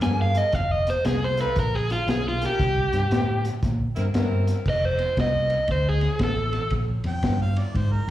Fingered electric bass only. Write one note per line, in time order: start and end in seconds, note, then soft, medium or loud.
0.02 0.40 G2 medium
0.53 0.91 F1 medium
1.05 1.43 C2 medium
1.56 1.94 A#1 medium
2.08 2.46 B1 medium
2.59 2.84 C2 medium
2.93 3.06 G2 medium
3.11 3.49 A2 medium
3.63 3.87 A#2 medium
3.97 4.10 G2 medium
4.15 4.53 G2 medium
4.66 5.04 F1 medium
5.17 5.55 C2 medium
5.68 6.06 D2 medium
6.20 6.58 A1 medium
6.71 6.96 A#1 medium
7.04 7.18 F2 medium
7.23 7.61 G2 medium
7.74 7.99 G#2 medium